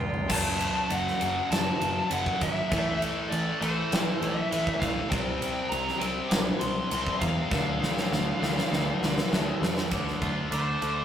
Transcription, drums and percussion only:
0.14 floor tom medium
0.29 kick loud
0.29 crash loud
0.61 ride medium
0.90 ride loud
1.07 snare soft
1.21 ride medium
1.52 snare loud
1.52 ride loud
1.81 ride medium
2.11 ride loud
2.26 kick medium
2.41 kick medium
2.41 ride medium
2.71 kick loud
2.71 ride loud
3.02 ride medium
3.32 ride medium
3.62 ride medium
3.92 snare loud
3.92 ride loud
4.22 ride medium
4.52 ride loud
4.67 kick medium
4.82 kick medium
4.82 ride medium
5.12 kick loud
5.12 ride loud
5.42 ride medium
5.72 ride medium
5.88 snare soft
6.01 ride medium
6.31 snare loud
6.31 ride loud
6.61 ride medium
6.91 ride loud
7.07 kick medium
7.21 kick medium
7.21 ride medium
7.51 kick loud
7.51 snare medium
7.83 snare medium
7.97 snare medium
8.12 snare medium
8.43 snare medium
8.58 snare medium
8.73 snare medium
9.03 snare medium
9.18 snare medium
9.33 snare loud
9.63 snare loud
9.78 snare medium
9.91 kick loud
9.91 ride medium
10.08 snare soft
10.22 kick medium
10.22 ride medium
10.52 ride medium
10.82 ride medium

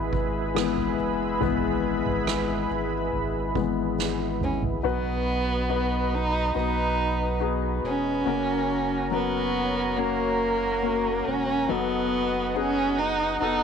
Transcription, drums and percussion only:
0.13 kick medium
0.56 cross-stick medium
0.77 floor tom soft
1.41 floor tom medium
2.05 floor tom medium
2.27 cross-stick medium
3.12 floor tom soft
3.55 kick medium
3.99 snare soft
4.41 mid tom medium
4.62 floor tom medium

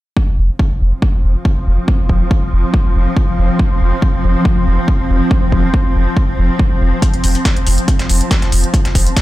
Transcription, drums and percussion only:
0.17 kick loud
0.59 kick loud
1.02 kick loud
1.45 kick loud
1.88 kick loud
2.09 kick medium
2.31 kick loud
2.74 kick loud
3.17 kick loud
3.59 kick loud
4.02 kick loud
4.45 kick loud
4.88 kick loud
5.31 kick loud
5.52 kick medium
5.74 kick loud
6.17 kick loud
6.59 kick loud
7.02 kick loud
7.02 closed hi-hat medium
7.14 closed hi-hat soft
7.24 closed hi-hat medium
7.24 open hi-hat loud
7.35 closed hi-hat medium
7.35 closed hi-hat soft
7.45 kick loud
7.45 snare loud
7.45 closed hi-hat medium
7.57 closed hi-hat soft
7.67 closed hi-hat medium
7.67 open hi-hat loud
7.78 closed hi-hat soft
7.88 kick loud
7.88 closed hi-hat medium
7.99 snare medium
7.99 closed hi-hat medium
8.09 closed hi-hat medium
8.09 open hi-hat loud
8.21 closed hi-hat medium
8.31 kick loud
8.31 snare loud
8.31 closed hi-hat medium
8.42 snare soft
8.42 closed hi-hat medium
8.52 closed hi-hat medium
8.52 open hi-hat loud
8.64 closed hi-hat soft
8.74 kick loud
8.74 closed hi-hat medium
8.85 snare soft
8.85 closed hi-hat medium
8.95 kick medium
8.95 closed hi-hat medium
8.95 open hi-hat loud
9.07 closed hi-hat medium
9.17 kick loud
9.17 snare loud
9.17 closed hi-hat medium

